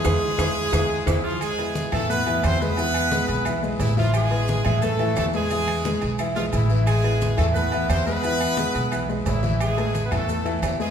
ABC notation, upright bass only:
X:1
M:4/4
L:1/8
Q:1/4=176
K:Ephr
V:1 name="Upright bass" clef=bass
E,, z E,, z E,, z E,, z | z3 E,,3 E,,2- | E,,3 B,,,3 A,,,2- | A,,,3 A,,3 E,,2- |
E,,3 B,,,3 A,,,2- | A,,,3 E,,3 E,,2- | E,,3 B,,,3 A,,,2- | A,,,3 E,,3 E,,2 |]